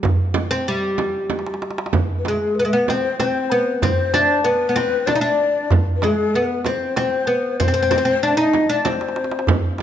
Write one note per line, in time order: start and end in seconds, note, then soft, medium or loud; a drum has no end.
0.03 frame drum medium
0.03 darbuka dum loud
0.34 frame drum medium
0.51 0.66 C4 medium
0.68 1.77 G3 medium
0.98 darbuka tek medium
0.98 frame drum medium
1.30 darbuka tek medium
1.30 frame drum medium
1.39 darbuka ka medium
1.47 darbuka tek medium
1.54 darbuka ka medium
1.62 darbuka tek medium
1.71 darbuka ka medium
1.78 darbuka tek medium
1.86 darbuka ka medium
1.93 frame drum medium
1.93 darbuka dum medium
2.19 2.25 B4 soft
2.25 2.59 G#3 medium
2.25 2.56 G#4 medium
2.25 2.29 B4 medium
2.25 darbuka tek medium
2.25 frame drum medium
2.55 2.67 B4 medium
2.55 darbuka ka soft
2.59 2.64 B3 medium
2.65 2.71 G#3 medium
2.65 2.88 B4 medium
2.73 2.90 B3 medium
2.86 3.19 C4 medium
2.86 3.18 C5 medium
2.86 darbuka tek medium
2.86 frame drum medium
3.20 3.52 C4 medium
3.20 3.78 C5 medium
3.20 darbuka tek medium
3.20 frame drum medium
3.51 3.84 B3 medium
3.51 darbuka ka soft
3.82 4.13 C4 medium
3.82 4.45 C5 medium
3.82 darbuka dum medium
3.82 frame drum medium
4.14 4.46 D4 medium
4.14 darbuka tek medium
4.14 frame drum medium
4.44 4.68 B3 medium
4.44 5.09 B4 medium
4.44 darbuka ka soft
4.69 4.76 B3 medium
4.76 5.07 C4 medium
4.76 darbuka tek medium
4.76 frame drum medium
5.07 5.14 D4 medium
5.07 5.22 D5 medium
5.07 darbuka tek medium
5.07 frame drum medium
5.15 5.21 D#4 medium
5.21 5.67 D4 medium
5.21 5.68 D5 medium
5.40 darbuka ka soft
5.71 darbuka dum medium
5.71 frame drum medium
5.96 6.05 B4 soft
6.02 6.35 G#3 medium
6.02 6.37 G#4 medium
6.02 darbuka tek medium
6.02 frame drum medium
6.34 6.67 B3 medium
6.34 6.65 B4 medium
6.34 darbuka ka soft
6.65 6.95 C4 medium
6.65 6.95 C5 medium
6.65 darbuka tek medium
6.65 frame drum medium
6.96 7.29 C4 medium
6.96 7.57 C5 medium
6.96 darbuka tek medium
6.96 frame drum medium
7.27 7.60 B3 medium
7.27 darbuka ka soft
7.60 7.67 C4 medium
7.60 8.25 C5 medium
7.60 frame drum medium
7.60 darbuka dum medium
7.68 7.72 C4 medium
7.74 7.81 C4 medium
7.82 7.90 C4 medium
7.91 7.97 C4 medium
7.91 darbuka tek medium
7.91 frame drum medium
7.98 8.04 C4 medium
8.05 8.13 C4 medium
8.22 8.37 D4 medium
8.22 8.39 D5 medium
8.22 darbuka ka soft
8.37 8.69 D#4 medium
8.37 8.72 D#5 medium
8.54 darbuka tek medium
8.54 frame drum medium
8.69 8.86 D4 medium
8.69 8.88 D5 medium
8.85 9.44 C4 medium
8.85 9.49 C5 medium
8.85 darbuka tek medium
8.85 frame drum medium
8.93 darbuka ka medium
9.01 darbuka tek medium
9.09 darbuka ka medium
9.16 darbuka tek medium
9.24 darbuka ka medium
9.31 darbuka tek medium
9.39 darbuka ka medium
9.47 darbuka dum medium
9.47 frame drum loud
9.78 darbuka tek medium